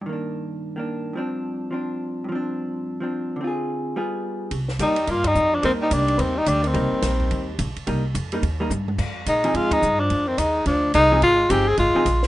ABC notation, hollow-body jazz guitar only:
X:1
M:4/4
L:1/8
Q:"Swing" 1/4=214
K:Cm
V:1 name="Hollow-body jazz guitar"
[G,,E,B,D]4- [G,,E,B,D] [E,B,D]3 | [G,,F,CD]4 [F,CD]4 | [G,,F,CD]4- [G,,F,CD] [F,CD]3 | [D,CFA]4 [G,=B,FA]4 |
z2 [G,B,E] z4 z | [G,B,E]4- [G,B,E] z3 | [G,B,E]4- [G,B,E] z3 | [G,B,E] z2 [G,B,E] z [G,B,E] z2 |
z3 [F,CEA]3 z2 | z6 z [F,CEA] | z2 [F,CEA] z2 [F,CEA] z2 |]